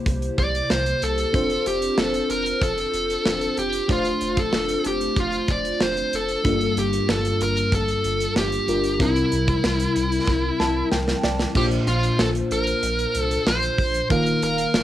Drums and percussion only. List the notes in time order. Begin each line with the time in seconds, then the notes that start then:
0.06 kick, closed hi-hat
0.22 closed hi-hat
0.38 kick, closed hi-hat
0.55 closed hi-hat
0.70 snare
0.86 closed hi-hat
1.02 closed hi-hat
1.18 closed hi-hat
1.34 kick, closed hi-hat
1.50 closed hi-hat
1.66 closed hi-hat
1.82 closed hi-hat
1.98 snare
2.14 closed hi-hat
2.30 closed hi-hat
2.46 closed hi-hat
2.61 kick, closed hi-hat
2.78 closed hi-hat
2.94 closed hi-hat
3.10 closed hi-hat
3.26 snare
3.41 closed hi-hat
3.57 closed hi-hat
3.73 closed hi-hat
3.89 kick, closed hi-hat
4.05 closed hi-hat
4.21 closed hi-hat
4.37 kick, closed hi-hat
4.53 snare
4.69 closed hi-hat
4.85 closed hi-hat
5.01 closed hi-hat
5.17 kick, closed hi-hat
5.33 closed hi-hat
5.48 kick, closed hi-hat
5.65 closed hi-hat
5.81 snare
5.97 closed hi-hat
6.13 closed hi-hat
6.28 closed hi-hat
6.45 kick, closed hi-hat
6.61 closed hi-hat
6.77 closed hi-hat
6.93 closed hi-hat
7.09 snare
7.25 closed hi-hat
7.41 closed hi-hat
7.57 closed hi-hat
7.72 kick, closed hi-hat
7.88 closed hi-hat
8.04 closed hi-hat
8.20 closed hi-hat
8.36 snare
8.52 closed hi-hat
8.68 closed hi-hat
8.84 closed hi-hat
9.00 kick, closed hi-hat
9.16 closed hi-hat
9.32 closed hi-hat
9.48 kick, closed hi-hat
9.64 snare
9.80 closed hi-hat
9.96 closed hi-hat
10.12 closed hi-hat
10.27 kick, snare
10.60 snare
10.92 snare
11.08 snare
11.23 snare
11.39 snare
11.55 kick, crash
11.71 closed hi-hat
11.87 closed hi-hat
12.03 closed hi-hat
12.19 snare
12.35 closed hi-hat
12.51 closed hi-hat
12.67 closed hi-hat
12.83 closed hi-hat
12.99 closed hi-hat
13.14 closed hi-hat
13.31 closed hi-hat
13.47 snare
13.62 closed hi-hat
13.78 kick, open hi-hat
13.94 closed hi-hat
14.10 kick, closed hi-hat
14.26 closed hi-hat
14.42 closed hi-hat
14.58 closed hi-hat
14.74 snare